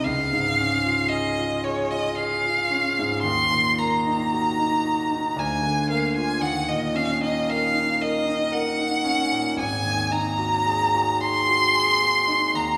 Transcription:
<<
  \new Staff \with { instrumentName = "Violin" } { \time 3/4 \key ees \dorian \tempo 4 = 56 f''4 ees''8 des''16 ees''16 f''4 | c'''8 bes''4. aes''8 f''16 aes''16 | ges''16 ees''16 f''16 ees''16 f''8 ees''8 ges''4 | aes''8 bes''4 c'''4~ c'''16 bes''16 | }
  \new Staff \with { instrumentName = "Grand piano" } { \time 3/4 \key ees \dorian des,16 aes,16 des'16 f'16 aes'16 f'16 aes'16 f'16 aes'16 f'16 des'16 aes,16 | ees,16 bes,16 bes16 ees'16 ges'16 ees'16 ges'16 ees'16 d,16 d16 bes16 f'16 | ees,16 bes,16 des'16 ees'16 bes'16 ees'16 bes'16 ees'16 bes'16 ees'16 des'16 bes,16 | aes,,16 ees,16 ees'16 ges'16 aes'16 ges'16 aes'16 ges'16 aes'16 ges'16 ees'16 ees,16 | }
>>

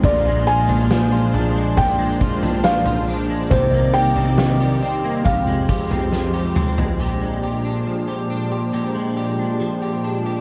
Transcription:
<<
  \new Staff \with { instrumentName = "Felt piano" } { \time 4/4 \key bes \mixolydian \tempo 4 = 69 d''8 aes''4. g''4 f''8. r16 | c''8 g''4. f''4. r8 | r1 | }
  \new Staff \with { instrumentName = "Clean electric guitar" } { \time 4/4 \key bes \mixolydian <bes, f'>16 aes16 f'16 d'16 f16 f'16 d'16 aes16 <bes, f'>16 aes16 f'16 d'16 f16 f'16 d'16 aes16 | <c g'>16 bes16 g'16 c'16 ees16 g'16 c'16 bes16 <f, g'>16 aes16 g'16 c'16 f16 g'16 c'16 aes16 | <bes, g'>16 aes16 g'16 d'16 f16 g'16 d'16 g'16 <bes, g'>16 aes16 g'16 d'16 f16 g'16 d'16 g'16 | }
  \new Staff \with { instrumentName = "Analog synth pad" } { \clef bass \time 4/4 \key bes \mixolydian <bes, f aes d' c''>1 | <c g bes ees' d''>2 <f, f aes g' c''>2 | <bes, f aes d' g' c''>1 | }
  \new Staff \with { instrumentName = "Clean electric guitar" } { \clef bass \time 4/4 \key bes \mixolydian <bes, f aes d'>4. <f aes d'>8 <bes, f aes d'>8 <f aes d'>4. | <c ees bes c' g'>4. <bes c' g'>8 <f, c f aes c' g'>8 <f aes c' g'>4. | r1 | }
  \new DrumStaff \with { instrumentName = "Drums" } \drummode { \time 4/4 <bd tamb tomfh>8 tamb16 tomfh16 <sn tamb>8 tomfh8 <bd tamb tomfh>8 <bd tamb>16 tomfh16 <sn tamb>16 tomfh16 tamb8 | <bd tamb tomfh>8 tamb16 tomfh16 <sn tamb>4 <bd tamb tomfh>8 <bd tamb>16 tomfh16 sn8 toml16 tomfh16 | r4 r4 r4 r4 | }
>>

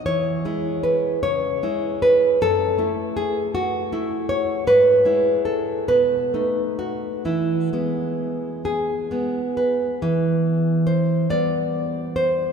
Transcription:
\new Staff \with { instrumentName = "Nylon-string guitar" } { \time 6/8 \key e \major \tempo 4. = 48 << { cis''4 b'8 cis''4 b'8 | a'4 gis'8 fis'4 cis''8 | b'4 a'8 b'4 fis'8 | e'4. gis'4 b'8~ |
\key e \minor b'4 c''8 d''4 c''8 | } \\ { e8 <gis e'>4 cis8 <gis e'>4 | fis,8 <a e'>4. <a e'>4 | gis,8 <gis e'>4 b,8 <a dis'>4 | e8 <gis b>4. <gis b>4 |
e4. <g b>4. | } >> }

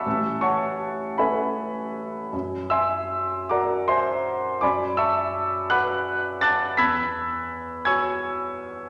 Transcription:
\new Staff \with { instrumentName = "Grand piano" } { \time 6/8 \key fis \minor \tempo 4. = 54 << { <e'' a'' cis''' e'''>8 <cis'' fis'' a'' cis'''>4 <b' e'' gis'' b''>4. | r8 <e'' gis'' c''' e'''>4 <d'' fis'' ais'' d'''>8 <c'' e'' gis'' c'''>4 | <d'' gis'' b'' d'''>8 <e'' a'' cis''' e'''>4 <fis'' b'' d''' fis'''>4 <a'' d''' fis''' a'''>8 | <b'' e''' gis''' b'''>4. <gis'' cis''' e''' gis'''>4. | } \\ { a,,4. <cis' a'>4. | fis,4. <fis' ais'>4. | fis,4. <fis' b'>4. | e,4. <fis' cis''>4. | } >> }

